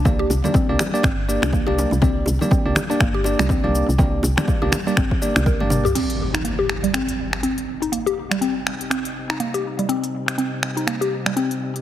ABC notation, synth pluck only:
X:1
M:4/4
L:1/16
Q:"Swing 16ths" 1/4=122
K:Cm
V:1 name="Synth pluck"
B, G z G, C z3 C z2 D B, G z G, | C z3 C z2 D B, G z G, C z3 | C z2 D B, G z G, C z3 B z2 G | C z2 E B, G z G, C z3 C z2 E |
B, G z G, C z3 C z2 E B, G z G, | C z3 C z2 E B, G z G, C z3 |]